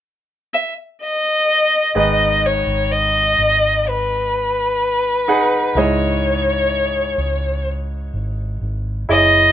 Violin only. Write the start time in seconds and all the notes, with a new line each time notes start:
0.54 E5
1.03 D#5
1.97 D#5
2.46 C#5
2.92 D#5
3.88 B4
5.78 C#5
9.11 D#5